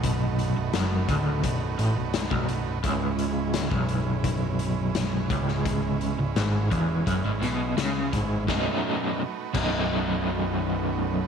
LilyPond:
<<
  \new Staff \with { instrumentName = "Transistor combo organ" } { \time 4/4 \key b \mixolydian \tempo 4 = 85 << { b'1~ | b'1~ | b'1 | <a dis' fis' b'>1 | } \\ { <a dis' fis'>1 | <gis cis' e'>1~ | <gis cis' e'>1 | r1 | } >> }
  \new Staff \with { instrumentName = "Overdriven electric guitar" } { \clef bass \time 4/4 \key b \mixolydian b,,8. b,,16 fis,8 d,8 b,,8 a,16 b,,8 b,,16 b,,8 | cis,4~ cis,16 b,,2~ b,,16 cis,8~ | cis,8. cis,16 gis,8 e,8 fis,16 gis,16 b,8 cis8 gis,8 | <b,, fis, b, fis a dis'>16 r4 r16 <b,, fis, b, fis a dis'>2~ <b,, fis, b, fis a dis'>8 | }
  \new Staff \with { instrumentName = "Picked electric bass" } { \clef bass \time 4/4 \key b \mixolydian b,,,8. b,,,16 fis,,8 d,,8 b,,,8 a,,16 b,,,8 b,,,16 b,,,8 | cis,,4~ cis,,16 b,,,2~ b,,,16 cis,,8~ | cis,,8. cis,,16 gis,,8 e,,8 fis,,16 gis,,16 b,,8 cis,8 gis,,8 | b,,,16 r4 r16 b,,,2~ b,,,8 | }
  \new DrumStaff \with { instrumentName = "Drums" } \drummode { \time 4/4 <hh bd>8 hh8 <hh sn>8 <hh bd>8 <hh bd>8 hh8 <hh sn>16 bd16 hh8 | <hh bd>8 hh8 <hh sn>16 bd16 hh8 <hh bd>8 hh8 <hh sn>8 <hh bd>16 sn16 | <hh bd>8 hh8 <hh sn>8 <hh bd>8 <hh bd>8 <hh sn>8 <hh sn>8 <hh bd>8 | <bd sn>4 r8 <cymc bd>8 r4 r4 | }
>>